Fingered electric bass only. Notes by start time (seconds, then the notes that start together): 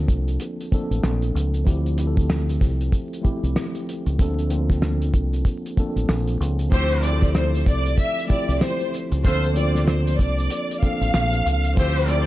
0.09 C2
0.91 A1
1.04 A#1
1.35 C#2
1.67 D2
2.61 C2
3.43 C2
4.06 C#2
4.19 D2
5.14 C2
5.96 A1
6.09 A#1
6.40 C#2
6.72 D2
7.67 C2
8.49 C2
9.12 C#2
9.25 D2
10.19 C2
11.01 A1
11.14 A#1
11.46 C#2
11.77 D2